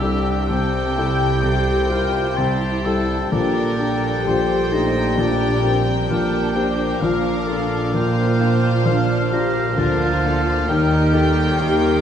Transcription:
Already playing: C2 C3 G3 G4 E5 G5 E6
0.01 G3 D4 E4 G4 A4
0.48 C2 C3 C4 G4 A4 G5 E6
0.96 G3 E4 A4
1.42 C2 C3 G4 A4 C5 D6
1.90 G3 E4 F4 G4 A#4
2.36 C2 C3 E4 G4 C5 A5 C6
2.84 G3 E4 A4 E6
3.31 A#1 A#2 G3 D4 G4 A4 A#4 G5 A5 D6
3.79 A#3 D4 G4 A4
4.26 A#1 A#2 G4 C5 G5 C6
4.73 A3 D4 D#4 G4 A#5
5.18 A#1 A#2 D4 A#4 A5 D6
5.64 A#3 C4 D4 G4
6.10 A#1 A#2 D4 A4 A#4 G5 D6
6.55 A#3 D4 G4 A#4 C5
7.01 A#1 A#2 F3 D4 A#4 F5
7.47 A#3 D4 F4 A4
7.94 A#1 A#2 F4 A#4 C5 G5
8.40 A#3 D4 F4
8.86 A#1 A#2 D4 C5 F5 F6
9.32 A#3 D4 F4 G4 A#5
9.77 A#1 D2 A#2 D3 F4 A#4 F5 A5
10.24 A#3 D4 F4 A4
10.68 D#2 D#3 G3 D#4 G4 A#4 G5
11.13 A#3 D#4 G4 A4
11.58 D#2 D#3 G4 A#4 F5

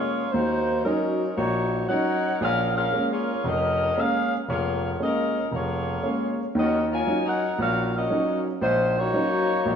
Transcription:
Already playing: G#3 A#3 C#4 F4 G#4 C#5
0.31 D#2 A#3 D#4 F#4 C5
0.84 F#3 C#4 D#4 A#4
1.36 A#1 A#3 D#4 F#4 C#5
1.89 F#3 C#4 D#4 A#4 C#5 F#5
2.41 A#1 C#4 G#4 A#4 F5
2.75 C#4 G#4 A#4 F5
2.92 G#3 A#3 C#4
3.12 A#3 F4 G#4 C#5
3.44 F1 C#4 G#4 A#4 D#5
3.96 G#3 A#3 C#4 G#4 A#4 F5
4.49 F1 A#3 F4 G#4 C#5
4.99 G#3 A#3 C#4 G#4 A#4 D#5
5.52 F1 A#3 F4 G#4 C#5
6.02 G#3 A#3 C#4
6.55 D#2 D#3 C#4 F#4 A#4 D#5
6.92 F4 A#4 C#5 G#5
7.07 F#3 C#4 D#4
7.26 D#4 A#4 C#5 F#5
7.59 A#1 C#4 F#4 A#4 F5
7.96 C#4 F#4 A#4 D#5
8.10 F#3 C#4 D#4
8.61 A#1 G#3 C#4 F4 C5
8.97 A#3 D#4 F#4 C#5
9.13 F#3 C#4 D#4
9.66 A#1

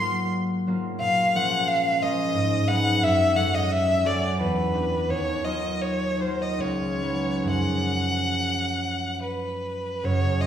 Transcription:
Already playing: G#2 G#4 C6
0.00 F#3 A#3 F4 A#4
0.67 F#3 A#3 F4 A#4
1.00 A#2 F5
1.35 F3 G#3 C#4 A#4 F#5
1.68 F5
2.01 F3 G#3 C#4 A#4 D#5
2.34 G#2
2.67 F#3 G#3 D#4 B4 F#5
3.02 F#2 E5
3.35 F#3 C#4 F#4 A4 F#5
3.55 D#5
3.72 E5
4.04 F#3 C#4 F#4 A4 D5
4.39 E2 B4
4.74 B3 D4 G4
5.09 D#2 C#5
5.43 F#3 D#4 F4 A#4 D#5
5.82 C#5
6.17 F#3 D#4 F4 C5
6.23 A#4
6.42 D#5
6.58 C#2 C#5
7.02 F#3 D#4 G#4 B4
7.43 F#2 F3 C#4 G#4
7.47 A#4 F#5
9.23 B4
10.03 F#1 F#2 C#5
10.22 C#3
10.40 F4 D#5

